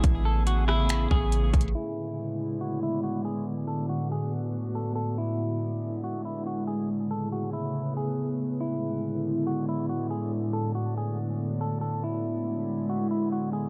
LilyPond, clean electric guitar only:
\new Staff \with { instrumentName = "Clean electric guitar" } { \time 4/4 \key e \mixolydian \tempo 4 = 140 r8 a'8 fis'8 e'4 gis'4. | e'2 fis'8 e'8 fis'8 gis'8 | r8 a'8 fis'8 gis'8 r4 a'8 a'8 | e'2 fis'8 e'8 fis'8 gis'8 |
r8 a'8 fis'8 e'4 gis'4. | e'2 fis'8 e'8 fis'8 gis'8 | r8 a'8 fis'8 gis'8 r4 a'8 a'8 | e'2 fis'8 e'8 fis'8 gis'8 | }